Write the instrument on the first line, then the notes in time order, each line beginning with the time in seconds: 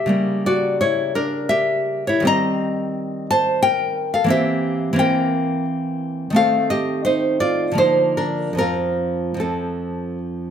nylon-string guitar
Already playing: G4 E5
0.06 C#3 G3 A#3
0.46 F#4 D5
0.81 E4 C#5
1.15 D4 A#4
1.49 G4 E5
2.07 E4 C#5
2.20 D#3 G3
2.25 C4 D#5 A#5
3.31 C5 A5
3.63 A#4 G5
4.14 A4 F5
4.24 E3 A#3
4.28 C4 G4 E5
4.93 E3 A#3 C4
4.99 A#4 G5
6.30 D#3 A3
6.34 C4 A4 F5
6.70 G4 D#5
7.05 D#4 C5
7.40 F4 D5
7.72 D3 F3 A#3
7.78 D#4 C5
8.17 D4 A#4
8.53 F2 F3
8.57 C4 F4 A#4
9.34 F2 F3
9.40 C4 A4